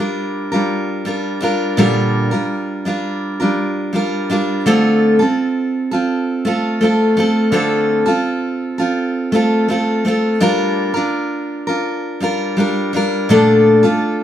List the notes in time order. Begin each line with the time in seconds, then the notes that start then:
Already playing: G3
0.00 D4 F4 A#4
0.52 G3 D4 F4 A#4
1.05 G3 D4 F4 A#4
1.41 G3 D4 F4 A#4
1.77 A#2 D3 G3 D4 F4 A#4
2.31 G3 D4 F4 A#4
2.85 G3 D4 F4 A#4
3.40 G3 D4 F4 A#4
3.93 G3 D4 F4 A#4
4.30 G3 D4 F4 A#4
4.66 D3 A3 C4 F4 A4
5.19 C4 F4 A4
5.91 C4 F4 A4
6.45 A3 C4 F4 A4
6.81 A3 C4 F4 A4
7.17 A3 C4 F4 A4
7.52 D3 A3 C4 F4 A4
8.06 C4 F4 A4
8.78 C4 F4 A4
9.32 A3 C4 F4 A4
9.68 A3 C4 F4 A4
10.05 A3 C4 F4 A4
10.40 G3 D4 F4 A#4
10.94 D4 F4 A#4
11.67 D4 F4 A#4
12.20 G3 D4 F4 A#4
12.57 G3 D4 F4 A#4
12.93 G3 D4 F4 A#4
13.29 A#2 D3 A3 D4 F4 A4
13.83 A3 D4 F4 A4